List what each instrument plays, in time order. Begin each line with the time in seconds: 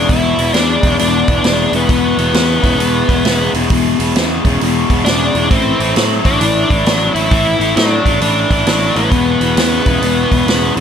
Already playing: lead electric guitar D4
0.08 picked electric bass E1, overdriven electric guitar E2 B2, lead electric guitar E4, kick, open hi-hat
0.38 picked electric bass E1, overdriven electric guitar E2 B2, open hi-hat
0.53 picked electric bass E2, overdriven electric guitar E2 C#3, lead electric guitar D4, snare, open hi-hat
0.83 picked electric bass E1, overdriven electric guitar E2 C#3, kick, open hi-hat
0.99 picked electric bass E1, overdriven electric guitar E2 B2, lead electric guitar D4, open hi-hat
1.28 picked electric bass E1, overdriven electric guitar E2 B2, kick, open hi-hat
1.43 picked electric bass E1, overdriven electric guitar E2 C#3, snare, open hi-hat
1.72 picked electric bass E1, overdriven electric guitar E2 C#3, lead electric guitar B3, open hi-hat
1.89 picked electric bass E1, overdriven electric guitar E2 B2, kick, open hi-hat
2.17 picked electric bass E1, overdriven electric guitar E2 B2, open hi-hat
2.34 picked electric bass E2, overdriven electric guitar E2 C#3, snare, open hi-hat
2.62 picked electric bass E1, overdriven electric guitar E2 C#3, kick, open hi-hat
2.78 picked electric bass E1, overdriven electric guitar E2 B2, open hi-hat
3.08 picked electric bass E1, overdriven electric guitar E2 B2, kick, open hi-hat
3.25 picked electric bass E1, overdriven electric guitar E2 C#3, snare, open hi-hat
3.54 picked electric bass E1, overdriven electric guitar E2 C#3, open hi-hat
3.70 picked electric bass E1, overdriven electric guitar E2 B2, kick, open hi-hat
3.99 picked electric bass E1, overdriven electric guitar E2 B2, open hi-hat
4.15 overdriven electric guitar E2 C#3, picked electric bass E2, snare, open hi-hat
4.45 picked electric bass E1, overdriven electric guitar E2 C#3, kick, open hi-hat
4.60 picked electric bass E1, overdriven electric guitar E2 B2, open hi-hat
4.90 picked electric bass E1, overdriven electric guitar E2 B2, kick, open hi-hat
5.05 picked electric bass E1, overdriven electric guitar E2 C#3, lead electric guitar D4, snare, open hi-hat
5.35 picked electric bass E1, overdriven electric guitar E2 C#3, open hi-hat
5.51 picked electric bass A1, overdriven electric guitar A2 E3, lead electric guitar C4, kick, open hi-hat
5.80 picked electric bass A1, overdriven electric guitar A2 E3, open hi-hat
5.96 overdriven electric guitar A2 F#3, picked electric bass A2, snare, open hi-hat
6.24 picked electric bass A1, overdriven electric guitar A2 F#3, lead electric guitar D4, kick, open hi-hat
6.41 picked electric bass A1, overdriven electric guitar A2 E3, open hi-hat
6.69 picked electric bass A1, overdriven electric guitar A2 E3, kick, open hi-hat
6.85 picked electric bass A1, overdriven electric guitar A2 F#3, snare, open hi-hat
7.14 picked electric bass A1, overdriven electric guitar A2 F#3, lead electric guitar E4, open hi-hat
7.30 picked electric bass A1, overdriven electric guitar A2 E3, kick, open hi-hat
7.59 picked electric bass A1, overdriven electric guitar A2 E3, open hi-hat
7.76 overdriven electric guitar A2 F#3, picked electric bass A2, lead electric guitar D4, snare, open hi-hat
8.05 picked electric bass A1, overdriven electric guitar A2 F#3, kick, open hi-hat
8.21 picked electric bass A1, overdriven electric guitar A2 E3, lead electric guitar D4, open hi-hat
8.50 picked electric bass A1, overdriven electric guitar A2 E3, kick, open hi-hat
8.66 picked electric bass A1, overdriven electric guitar A2 F#3, snare, open hi-hat
8.95 picked electric bass A1, overdriven electric guitar A2 F#3, lead electric guitar B3, open hi-hat
9.12 picked electric bass E1, overdriven electric guitar E2 B2, kick, open hi-hat
9.41 picked electric bass E1, overdriven electric guitar E2 B2, open hi-hat
9.56 overdriven electric guitar E2 C#3, picked electric bass E2, snare, open hi-hat
9.86 picked electric bass E1, overdriven electric guitar E2 C#3, kick, open hi-hat
10.02 picked electric bass E1, overdriven electric guitar E2 B2, open hi-hat
10.31 picked electric bass E1, overdriven electric guitar E2 B2, kick, open hi-hat
10.47 picked electric bass E1, overdriven electric guitar E2 C#3, snare, open hi-hat
10.76 picked electric bass E1, overdriven electric guitar E2 C#3, open hi-hat